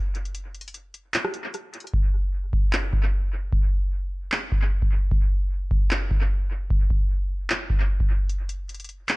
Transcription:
0.15 closed hi-hat
0.25 closed hi-hat
0.35 closed hi-hat
0.55 closed hi-hat
0.61 closed hi-hat
0.68 closed hi-hat
0.74 closed hi-hat
0.94 closed hi-hat
1.14 clap, closed hi-hat
1.25 cross-stick
1.34 closed hi-hat
1.54 closed hi-hat
1.74 closed hi-hat, open hi-hat
1.80 closed hi-hat
1.87 closed hi-hat
1.94 kick
2.53 kick
2.73 clap
2.93 kick
3.53 kick
4.32 clap
4.52 kick
4.82 kick
5.11 kick
5.71 kick
5.91 clap
6.11 kick
6.70 kick
6.90 kick
7.50 clap
7.70 kick
8.00 kick
8.29 closed hi-hat
8.49 closed hi-hat
8.69 closed hi-hat
8.74 closed hi-hat
8.80 closed hi-hat
8.84 closed hi-hat
8.89 closed hi-hat
9.09 clap, closed hi-hat

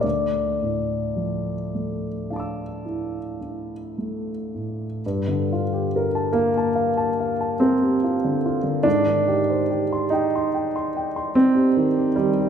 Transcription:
0.01 D2 D5
0.62 A2
1.16 F3
1.75 A3
2.30 D4 F5 A5
2.36 D6 E6
2.85 E4
3.41 D4
3.98 A3
4.55 A2
5.06 G2
5.28 D3
5.52 F4
5.73 G4
5.96 A#4
6.15 A5
6.33 A#3 F5
6.58 A5
6.75 F5
6.97 A5
7.20 F5
7.41 A5
7.60 C4 A#4
7.82 G4
8.04 F4
8.24 D3
8.46 F4
8.64 D3
8.83 G#2 D4
9.07 D#3
9.27 G4
9.50 C5
9.71 G4
9.93 C6
10.10 D#4 G5
10.35 C6
10.54 G5
10.76 C6
10.97 G5
11.16 C6
11.35 C4 C5
11.55 G4
11.77 D#3
11.98 G4
12.16 D#3 G3
12.40 G4

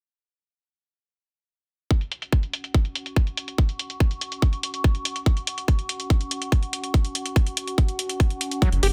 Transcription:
1.91 C#4, kick, closed hi-hat
1.97 F#4
2.01 closed hi-hat
2.12 F#5, closed hi-hat
2.22 closed hi-hat
2.33 kick, closed hi-hat
2.43 closed hi-hat
2.47 C#6
2.54 closed hi-hat
2.64 closed hi-hat
2.74 kick, closed hi-hat
2.85 closed hi-hat
2.95 closed hi-hat
3.06 closed hi-hat
3.16 kick, closed hi-hat
3.27 closed hi-hat
3.37 closed hi-hat
3.48 closed hi-hat
3.58 kick, closed hi-hat
3.69 closed hi-hat
3.79 closed hi-hat
3.90 closed hi-hat
4.00 kick, closed hi-hat
4.11 closed hi-hat
4.21 closed hi-hat
4.32 closed hi-hat
4.42 kick, closed hi-hat
4.53 closed hi-hat
4.63 closed hi-hat
4.74 closed hi-hat
4.84 kick, closed hi-hat
4.95 closed hi-hat
5.05 closed hi-hat
5.16 closed hi-hat
5.26 kick, closed hi-hat
5.37 closed hi-hat
5.47 closed hi-hat
5.58 closed hi-hat
5.68 kick, closed hi-hat
5.79 closed hi-hat
5.89 closed hi-hat
6.00 closed hi-hat
6.10 kick, closed hi-hat
6.21 closed hi-hat
6.31 closed hi-hat
6.42 closed hi-hat
6.52 kick, closed hi-hat
6.63 closed hi-hat
6.73 closed hi-hat
6.84 closed hi-hat
6.94 kick, closed hi-hat
7.05 closed hi-hat
7.15 closed hi-hat
7.26 closed hi-hat
7.36 kick, closed hi-hat
7.47 closed hi-hat
7.57 closed hi-hat
7.68 closed hi-hat
7.78 kick, closed hi-hat
7.88 closed hi-hat
7.99 closed hi-hat
8.09 closed hi-hat
8.20 kick, closed hi-hat
8.30 closed hi-hat
8.41 closed hi-hat
8.51 closed hi-hat
8.62 F#3, kick, closed hi-hat
8.72 F#1, closed hi-hat
8.83 F#1 G4, open hi-hat

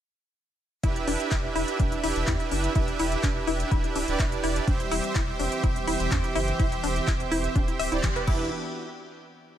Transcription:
0.83 E1 D4 E4 G4 B4 E5, kick, closed hi-hat
0.96 closed hi-hat
1.07 E1 D4, open hi-hat
1.20 closed hi-hat
1.31 E1 E4, kick, clap, closed hi-hat
1.55 E1 E4, open hi-hat
1.68 closed hi-hat
1.79 E1 D4, kick, closed hi-hat
1.92 closed hi-hat
2.03 E1 D4 E4 G4 B4 E5, open hi-hat
2.16 E1, closed hi-hat
2.27 E2 E4, kick, clap, closed hi-hat
2.40 closed hi-hat
2.51 F#1 D4, open hi-hat
2.64 closed hi-hat
2.75 E1 D4 E4 G4 B4 E5, kick, closed hi-hat
2.88 closed hi-hat
2.99 E1 E4, open hi-hat
3.12 closed hi-hat
3.23 E1 D4, kick, clap, closed hi-hat
3.47 E1 E4, open hi-hat
3.60 closed hi-hat
3.71 D1 E4, kick, closed hi-hat
3.84 closed hi-hat
3.95 D1 D4, open hi-hat
4.08 D1 D4 E4 G4 B4 D5, closed hi-hat
4.19 E1 E4, kick, clap, closed hi-hat
4.32 closed hi-hat
4.43 E1 E4, open hi-hat
4.56 closed hi-hat
4.67 E1 E3 G3 C4 D4 G4 C5 E5 G5, kick, closed hi-hat
4.80 closed hi-hat
4.91 E1 E4, open hi-hat
5.04 closed hi-hat
5.15 E1 E4, kick, clap, closed hi-hat
5.39 E1 D4, open hi-hat
5.52 closed hi-hat
5.63 E1 E4, kick, closed hi-hat
5.76 closed hi-hat
5.87 E1 E4 G4 C5 E5, open hi-hat
6.00 E1, closed hi-hat
6.11 E2 D4, kick, clap, closed hi-hat
6.24 closed hi-hat
6.35 F#1 E4, open hi-hat
6.48 closed hi-hat
6.59 E1 E4 G4 C5 E5, kick, closed hi-hat
6.72 closed hi-hat
6.83 E1 D4, open hi-hat
6.96 closed hi-hat
7.07 E1 E4, kick, clap, closed hi-hat
7.20 closed hi-hat
7.31 E1 E4, open hi-hat
7.44 closed hi-hat
7.55 D1 D4, kick, closed hi-hat
7.68 closed hi-hat
7.79 D1 E5, open hi-hat
7.92 D1 E4 G4 C5 D5, closed hi-hat
8.03 E1 E3, kick, clap, closed hi-hat
8.16 B4, closed hi-hat
8.27 E1 E3 B3 D4 E4 F#4 G4 B4 E5, kick, crash

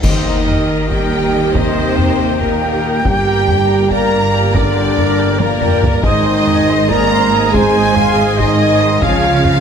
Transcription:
0.00 D#2 D#3 A#3 D#4 G4 A#4 D#5 G5, concert bass drum, taiko, crash
0.05 C5
0.26 A#4 A#5
0.47 G4 A#4 G5, taiko low-mid
0.68 A#4 A#5
0.87 G3 G4 G5, taiko
1.11 A#4 A#5
1.32 G4 G5
1.54 C3 C4 A#4 C5 D#5 A#5, taiko
1.76 G4 G5
1.96 A#4 G5 A#5, taiko low-mid
2.18 G4 G5
2.40 A#2 A#3 A#4 A#5, taiko
2.62 G4 G5
2.83 A#4 A#5
3.04 G1 G2 G3 G4 D5 G5, taiko
3.27 A#4 A#5
3.48 G4 G5, taiko low-mid
3.69 A#4 A#5
3.90 A#3 G4 A#4 D5 G5 A#5, taiko
4.11 A#4 A#5
4.33 G4 G5
4.54 D3 D4 A#4 D5 A#5, taiko
4.76 G4 G5
4.96 A#4 A#5, taiko low-mid
5.18 G4 G5, taiko rim
5.39 A#2 A#3 A#4 D5 A#5, taiko high
5.61 G4 G5, taiko low-mid
5.82 A#4 A#5, taiko low
6.03 G#1 G#2 D#3 G#3 D#4 G#4 C5 D#5 G#5, taiko
6.25 C5 C6
6.47 D#5 G#5, taiko low-mid
6.69 C5 C6
6.88 A#3 A#4 D5 D#5 G#5 A#5, taiko
6.92 A#5
7.11 C5 C6
7.32 D#5 G#5
7.50 G#3 G#4 C5 G#5 C6, taiko
7.74 D#5 G#5
7.94 C5 F5 C6, taiko low-mid
8.16 D#5 G#5
8.37 D#3 D#4 C5 D#5 C6, taiko
8.59 D#5 G#5
8.80 C5 C6
9.01 C#2 C#3 F3 F4 C#5 F5 G#5, taiko
9.23 C#5 F5, taiko rim
9.45 F5 G#5, taiko low-mid

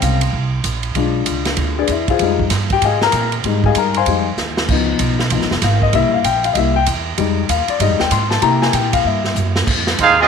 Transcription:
Already playing: C#3 G#3 C4
0.02 C2 F5, kick, hi-hat pedal, ride
0.21 ride
0.33 C2, kick
0.64 A#1, kick, hi-hat pedal, ride
0.83 ride
0.95 B1 G#3 D4 F4, kick, ride
1.26 C#2, kick, hi-hat pedal, ride
1.45 snare, ride
1.57 D2, kick, ride
1.78 D4 G#4 B4 D5
1.88 E2, kick, hi-hat pedal, ride
1.92 E4 E5
2.08 F4 G#4 C5 F5, kick, ride
2.19 F2 G3 G#3 D#4, kick, ride
2.39 kick
2.50 G2, kick, snare, hi-hat pedal, ride
2.70 G4 G5, kick, ride
2.82 G#2 G#4 D#5 F5 G#5, kick, ride
3.01 A#4 A#5, snare
3.12 A#2, kick, hi-hat pedal, ride
3.32 ride
3.44 G#2 G3 G#3 D#4, kick, ride
3.64 G#4 D#5 F5 G#5, kick
3.75 G2 A#4 A#5, kick, hi-hat pedal, ride
3.94 C5 F5 G#5 C6, ride
4.06 F2 G3 G#3 D#4, kick, ride
4.37 D#2, snare, hi-hat pedal
4.57 snare
4.68 C#2 F3 B3 D#4, kick, crash
4.99 B1, kick, hi-hat pedal, ride
5.19 snare
5.30 A#1 F3 B3 D#4, kick, ride
5.41 G#1, snare
5.51 F1, snare
5.62 G#1 F5, kick, snare, hi-hat pedal, ride
5.82 D#5, kick
5.93 C2 G3 A#3 E4 E5, kick, ride
6.03 A#1
6.13 G1 F5
6.24 A#1 G5, kick, hi-hat pedal, ride
6.44 F5, ride
6.53 C2 G3 A#3 D#5, kick, ride
6.57 E4 E5
6.76 G5
6.86 E2, kick, hi-hat pedal, ride
7.18 F2 G3 G#3 D#4, kick, ride
7.49 D#2 F5, kick, hi-hat pedal, ride
7.68 D5, muted upright bass stroke, ride
7.80 G2 G3 G#3 D#4 D#5, kick, ride
7.89 F2
8.00 D#2 G5, snare
8.11 G#2 C6, kick, hi-hat pedal, ride
8.30 A5, snare
8.41 C3 A#3 E4 G4 A#5, kick, ride
8.62 G#5, snare
8.73 A#2 G5, kick, hi-hat pedal, ride
8.93 F5, kick, ride
9.05 G2 E5, kick
9.25 snare
9.35 F#2, hi-hat pedal
9.56 snare
9.67 F2, kick, crash
9.87 snare
9.98 D#2 G#3 C4 D#4 F4 G#4 C5 F5, kick, hi-hat pedal, ride
10.19 G#3 C4 D#4 F4 G#4 D#5

